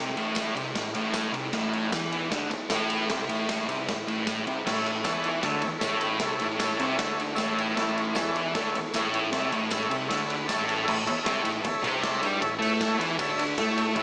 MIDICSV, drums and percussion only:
0, 0, Header, 1, 2, 480
1, 0, Start_track
1, 0, Tempo, 390117
1, 1892, Time_signature, 4, 2, 24, 8
1, 10045, Tempo, 385852
1, 17340, End_track
2, 0, Start_track
2, 0, Title_t, "Drums"
2, 209, Note_on_c, 9, 51, 72
2, 332, Note_off_c, 9, 51, 0
2, 429, Note_on_c, 9, 54, 101
2, 446, Note_on_c, 9, 38, 120
2, 446, Note_on_c, 9, 51, 109
2, 447, Note_on_c, 9, 36, 120
2, 552, Note_off_c, 9, 54, 0
2, 569, Note_off_c, 9, 38, 0
2, 569, Note_off_c, 9, 51, 0
2, 571, Note_off_c, 9, 36, 0
2, 696, Note_on_c, 9, 51, 80
2, 819, Note_off_c, 9, 51, 0
2, 928, Note_on_c, 9, 36, 115
2, 930, Note_on_c, 9, 38, 115
2, 930, Note_on_c, 9, 51, 99
2, 1051, Note_off_c, 9, 36, 0
2, 1053, Note_off_c, 9, 38, 0
2, 1053, Note_off_c, 9, 51, 0
2, 1163, Note_on_c, 9, 51, 78
2, 1286, Note_off_c, 9, 51, 0
2, 1397, Note_on_c, 9, 54, 97
2, 1399, Note_on_c, 9, 38, 114
2, 1399, Note_on_c, 9, 51, 91
2, 1406, Note_on_c, 9, 36, 114
2, 1520, Note_off_c, 9, 54, 0
2, 1522, Note_off_c, 9, 38, 0
2, 1522, Note_off_c, 9, 51, 0
2, 1530, Note_off_c, 9, 36, 0
2, 1646, Note_on_c, 9, 51, 70
2, 1769, Note_off_c, 9, 51, 0
2, 1883, Note_on_c, 9, 38, 111
2, 1883, Note_on_c, 9, 51, 99
2, 1890, Note_on_c, 9, 36, 114
2, 2006, Note_off_c, 9, 38, 0
2, 2006, Note_off_c, 9, 51, 0
2, 2013, Note_off_c, 9, 36, 0
2, 2132, Note_on_c, 9, 51, 70
2, 2255, Note_off_c, 9, 51, 0
2, 2365, Note_on_c, 9, 54, 97
2, 2367, Note_on_c, 9, 38, 116
2, 2367, Note_on_c, 9, 51, 97
2, 2372, Note_on_c, 9, 36, 118
2, 2488, Note_off_c, 9, 54, 0
2, 2490, Note_off_c, 9, 38, 0
2, 2490, Note_off_c, 9, 51, 0
2, 2495, Note_off_c, 9, 36, 0
2, 2612, Note_on_c, 9, 51, 82
2, 2735, Note_off_c, 9, 51, 0
2, 2850, Note_on_c, 9, 38, 114
2, 2850, Note_on_c, 9, 51, 99
2, 2853, Note_on_c, 9, 36, 115
2, 2974, Note_off_c, 9, 38, 0
2, 2974, Note_off_c, 9, 51, 0
2, 2976, Note_off_c, 9, 36, 0
2, 3087, Note_on_c, 9, 51, 71
2, 3210, Note_off_c, 9, 51, 0
2, 3320, Note_on_c, 9, 38, 115
2, 3320, Note_on_c, 9, 51, 111
2, 3324, Note_on_c, 9, 54, 84
2, 3333, Note_on_c, 9, 36, 115
2, 3443, Note_off_c, 9, 38, 0
2, 3443, Note_off_c, 9, 51, 0
2, 3447, Note_off_c, 9, 54, 0
2, 3456, Note_off_c, 9, 36, 0
2, 3565, Note_on_c, 9, 51, 83
2, 3688, Note_off_c, 9, 51, 0
2, 3810, Note_on_c, 9, 38, 110
2, 3810, Note_on_c, 9, 51, 106
2, 3818, Note_on_c, 9, 36, 109
2, 3933, Note_off_c, 9, 38, 0
2, 3933, Note_off_c, 9, 51, 0
2, 3941, Note_off_c, 9, 36, 0
2, 4051, Note_on_c, 9, 51, 81
2, 4174, Note_off_c, 9, 51, 0
2, 4292, Note_on_c, 9, 54, 88
2, 4295, Note_on_c, 9, 38, 119
2, 4295, Note_on_c, 9, 51, 107
2, 4300, Note_on_c, 9, 36, 123
2, 4415, Note_off_c, 9, 54, 0
2, 4418, Note_off_c, 9, 38, 0
2, 4418, Note_off_c, 9, 51, 0
2, 4423, Note_off_c, 9, 36, 0
2, 4537, Note_on_c, 9, 51, 81
2, 4660, Note_off_c, 9, 51, 0
2, 4781, Note_on_c, 9, 38, 110
2, 4781, Note_on_c, 9, 51, 103
2, 4783, Note_on_c, 9, 36, 123
2, 4904, Note_off_c, 9, 38, 0
2, 4904, Note_off_c, 9, 51, 0
2, 4906, Note_off_c, 9, 36, 0
2, 5022, Note_on_c, 9, 51, 70
2, 5145, Note_off_c, 9, 51, 0
2, 5254, Note_on_c, 9, 38, 110
2, 5254, Note_on_c, 9, 51, 93
2, 5254, Note_on_c, 9, 54, 87
2, 5262, Note_on_c, 9, 36, 120
2, 5377, Note_off_c, 9, 38, 0
2, 5377, Note_off_c, 9, 51, 0
2, 5377, Note_off_c, 9, 54, 0
2, 5385, Note_off_c, 9, 36, 0
2, 5498, Note_on_c, 9, 51, 67
2, 5621, Note_off_c, 9, 51, 0
2, 5744, Note_on_c, 9, 36, 113
2, 5748, Note_on_c, 9, 38, 113
2, 5748, Note_on_c, 9, 49, 99
2, 5867, Note_off_c, 9, 36, 0
2, 5871, Note_off_c, 9, 38, 0
2, 5871, Note_off_c, 9, 49, 0
2, 5982, Note_on_c, 9, 51, 67
2, 6105, Note_off_c, 9, 51, 0
2, 6205, Note_on_c, 9, 54, 94
2, 6212, Note_on_c, 9, 38, 118
2, 6212, Note_on_c, 9, 51, 98
2, 6216, Note_on_c, 9, 36, 116
2, 6328, Note_off_c, 9, 54, 0
2, 6335, Note_off_c, 9, 38, 0
2, 6335, Note_off_c, 9, 51, 0
2, 6339, Note_off_c, 9, 36, 0
2, 6443, Note_on_c, 9, 51, 76
2, 6567, Note_off_c, 9, 51, 0
2, 6680, Note_on_c, 9, 38, 118
2, 6680, Note_on_c, 9, 51, 98
2, 6690, Note_on_c, 9, 36, 115
2, 6803, Note_off_c, 9, 38, 0
2, 6803, Note_off_c, 9, 51, 0
2, 6813, Note_off_c, 9, 36, 0
2, 6910, Note_on_c, 9, 51, 77
2, 7033, Note_off_c, 9, 51, 0
2, 7152, Note_on_c, 9, 38, 122
2, 7152, Note_on_c, 9, 51, 94
2, 7163, Note_on_c, 9, 36, 114
2, 7164, Note_on_c, 9, 54, 92
2, 7275, Note_off_c, 9, 38, 0
2, 7275, Note_off_c, 9, 51, 0
2, 7286, Note_off_c, 9, 36, 0
2, 7287, Note_off_c, 9, 54, 0
2, 7391, Note_on_c, 9, 51, 77
2, 7514, Note_off_c, 9, 51, 0
2, 7625, Note_on_c, 9, 38, 112
2, 7625, Note_on_c, 9, 51, 112
2, 7641, Note_on_c, 9, 36, 117
2, 7748, Note_off_c, 9, 38, 0
2, 7748, Note_off_c, 9, 51, 0
2, 7764, Note_off_c, 9, 36, 0
2, 7867, Note_on_c, 9, 51, 74
2, 7990, Note_off_c, 9, 51, 0
2, 8117, Note_on_c, 9, 38, 121
2, 8117, Note_on_c, 9, 51, 113
2, 8122, Note_on_c, 9, 36, 122
2, 8122, Note_on_c, 9, 54, 93
2, 8240, Note_off_c, 9, 38, 0
2, 8240, Note_off_c, 9, 51, 0
2, 8245, Note_off_c, 9, 36, 0
2, 8245, Note_off_c, 9, 54, 0
2, 8360, Note_on_c, 9, 51, 77
2, 8483, Note_off_c, 9, 51, 0
2, 8599, Note_on_c, 9, 38, 116
2, 8599, Note_on_c, 9, 51, 103
2, 8603, Note_on_c, 9, 36, 108
2, 8722, Note_off_c, 9, 38, 0
2, 8722, Note_off_c, 9, 51, 0
2, 8726, Note_off_c, 9, 36, 0
2, 8853, Note_on_c, 9, 51, 73
2, 8976, Note_off_c, 9, 51, 0
2, 9058, Note_on_c, 9, 54, 88
2, 9083, Note_on_c, 9, 38, 114
2, 9083, Note_on_c, 9, 51, 94
2, 9084, Note_on_c, 9, 36, 110
2, 9181, Note_off_c, 9, 54, 0
2, 9206, Note_off_c, 9, 38, 0
2, 9206, Note_off_c, 9, 51, 0
2, 9207, Note_off_c, 9, 36, 0
2, 9331, Note_on_c, 9, 51, 76
2, 9454, Note_off_c, 9, 51, 0
2, 9562, Note_on_c, 9, 36, 115
2, 9565, Note_on_c, 9, 38, 111
2, 9565, Note_on_c, 9, 51, 93
2, 9685, Note_off_c, 9, 36, 0
2, 9688, Note_off_c, 9, 38, 0
2, 9688, Note_off_c, 9, 51, 0
2, 9812, Note_on_c, 9, 51, 74
2, 9935, Note_off_c, 9, 51, 0
2, 10025, Note_on_c, 9, 54, 98
2, 10042, Note_on_c, 9, 36, 117
2, 10045, Note_on_c, 9, 38, 118
2, 10045, Note_on_c, 9, 51, 100
2, 10149, Note_off_c, 9, 54, 0
2, 10166, Note_off_c, 9, 36, 0
2, 10169, Note_off_c, 9, 38, 0
2, 10169, Note_off_c, 9, 51, 0
2, 10283, Note_on_c, 9, 51, 68
2, 10408, Note_off_c, 9, 51, 0
2, 10526, Note_on_c, 9, 36, 122
2, 10526, Note_on_c, 9, 38, 117
2, 10526, Note_on_c, 9, 51, 98
2, 10650, Note_off_c, 9, 36, 0
2, 10650, Note_off_c, 9, 38, 0
2, 10650, Note_off_c, 9, 51, 0
2, 10776, Note_on_c, 9, 51, 72
2, 10900, Note_off_c, 9, 51, 0
2, 11005, Note_on_c, 9, 54, 99
2, 11013, Note_on_c, 9, 36, 115
2, 11019, Note_on_c, 9, 38, 123
2, 11019, Note_on_c, 9, 51, 104
2, 11129, Note_off_c, 9, 54, 0
2, 11138, Note_off_c, 9, 36, 0
2, 11144, Note_off_c, 9, 38, 0
2, 11144, Note_off_c, 9, 51, 0
2, 11255, Note_on_c, 9, 51, 75
2, 11379, Note_off_c, 9, 51, 0
2, 11493, Note_on_c, 9, 38, 113
2, 11493, Note_on_c, 9, 51, 99
2, 11494, Note_on_c, 9, 36, 105
2, 11618, Note_off_c, 9, 36, 0
2, 11618, Note_off_c, 9, 38, 0
2, 11618, Note_off_c, 9, 51, 0
2, 11734, Note_on_c, 9, 51, 73
2, 11858, Note_off_c, 9, 51, 0
2, 11961, Note_on_c, 9, 54, 103
2, 11973, Note_on_c, 9, 38, 114
2, 11973, Note_on_c, 9, 51, 102
2, 11978, Note_on_c, 9, 36, 116
2, 12086, Note_off_c, 9, 54, 0
2, 12097, Note_off_c, 9, 38, 0
2, 12097, Note_off_c, 9, 51, 0
2, 12102, Note_off_c, 9, 36, 0
2, 12219, Note_on_c, 9, 51, 81
2, 12343, Note_off_c, 9, 51, 0
2, 12461, Note_on_c, 9, 36, 116
2, 12464, Note_on_c, 9, 38, 113
2, 12464, Note_on_c, 9, 51, 108
2, 12585, Note_off_c, 9, 36, 0
2, 12588, Note_off_c, 9, 38, 0
2, 12588, Note_off_c, 9, 51, 0
2, 12702, Note_on_c, 9, 51, 76
2, 12826, Note_off_c, 9, 51, 0
2, 12937, Note_on_c, 9, 54, 101
2, 12939, Note_on_c, 9, 38, 106
2, 12939, Note_on_c, 9, 51, 106
2, 12940, Note_on_c, 9, 36, 116
2, 13062, Note_off_c, 9, 54, 0
2, 13063, Note_off_c, 9, 38, 0
2, 13063, Note_off_c, 9, 51, 0
2, 13064, Note_off_c, 9, 36, 0
2, 13184, Note_on_c, 9, 51, 74
2, 13308, Note_off_c, 9, 51, 0
2, 13423, Note_on_c, 9, 36, 115
2, 13426, Note_on_c, 9, 49, 127
2, 13548, Note_off_c, 9, 36, 0
2, 13550, Note_off_c, 9, 49, 0
2, 13662, Note_on_c, 9, 51, 74
2, 13786, Note_off_c, 9, 51, 0
2, 13899, Note_on_c, 9, 38, 119
2, 13899, Note_on_c, 9, 51, 104
2, 13902, Note_on_c, 9, 36, 127
2, 14024, Note_off_c, 9, 38, 0
2, 14024, Note_off_c, 9, 51, 0
2, 14026, Note_off_c, 9, 36, 0
2, 14133, Note_on_c, 9, 51, 81
2, 14257, Note_off_c, 9, 51, 0
2, 14372, Note_on_c, 9, 51, 112
2, 14379, Note_on_c, 9, 36, 119
2, 14497, Note_off_c, 9, 51, 0
2, 14503, Note_off_c, 9, 36, 0
2, 14617, Note_on_c, 9, 51, 81
2, 14742, Note_off_c, 9, 51, 0
2, 14861, Note_on_c, 9, 36, 113
2, 14861, Note_on_c, 9, 38, 118
2, 14861, Note_on_c, 9, 51, 111
2, 14985, Note_off_c, 9, 38, 0
2, 14985, Note_off_c, 9, 51, 0
2, 14986, Note_off_c, 9, 36, 0
2, 15100, Note_on_c, 9, 51, 84
2, 15224, Note_off_c, 9, 51, 0
2, 15340, Note_on_c, 9, 36, 117
2, 15341, Note_on_c, 9, 51, 112
2, 15464, Note_off_c, 9, 36, 0
2, 15466, Note_off_c, 9, 51, 0
2, 15589, Note_on_c, 9, 51, 83
2, 15713, Note_off_c, 9, 51, 0
2, 15822, Note_on_c, 9, 36, 122
2, 15822, Note_on_c, 9, 38, 118
2, 15822, Note_on_c, 9, 51, 121
2, 15946, Note_off_c, 9, 36, 0
2, 15946, Note_off_c, 9, 38, 0
2, 15946, Note_off_c, 9, 51, 0
2, 16072, Note_on_c, 9, 51, 90
2, 16196, Note_off_c, 9, 51, 0
2, 16297, Note_on_c, 9, 51, 119
2, 16299, Note_on_c, 9, 36, 118
2, 16421, Note_off_c, 9, 51, 0
2, 16423, Note_off_c, 9, 36, 0
2, 16547, Note_on_c, 9, 51, 86
2, 16672, Note_off_c, 9, 51, 0
2, 16781, Note_on_c, 9, 36, 127
2, 16782, Note_on_c, 9, 38, 121
2, 16782, Note_on_c, 9, 51, 123
2, 16905, Note_off_c, 9, 36, 0
2, 16906, Note_off_c, 9, 38, 0
2, 16906, Note_off_c, 9, 51, 0
2, 17025, Note_on_c, 9, 51, 85
2, 17150, Note_off_c, 9, 51, 0
2, 17251, Note_on_c, 9, 51, 118
2, 17252, Note_on_c, 9, 54, 26
2, 17255, Note_on_c, 9, 36, 124
2, 17340, Note_off_c, 9, 36, 0
2, 17340, Note_off_c, 9, 51, 0
2, 17340, Note_off_c, 9, 54, 0
2, 17340, End_track
0, 0, End_of_file